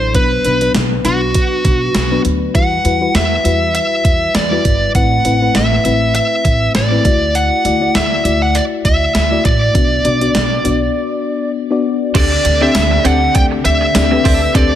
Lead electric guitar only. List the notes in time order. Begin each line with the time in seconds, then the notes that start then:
Already playing: C5
0.15 B4
1.05 F#4
2.55 F#5
3.15 E5
3.75 E5
4.36 D5
4.96 F#5
5.56 E5
6.15 E5
6.75 D5
7.35 F#5
7.95 E5
8.42 F#5
8.55 D5
8.85 E5
9.45 D5
12.16 D5
12.62 E5
13.06 F#5
13.35 G5
13.65 E5
14.56 D5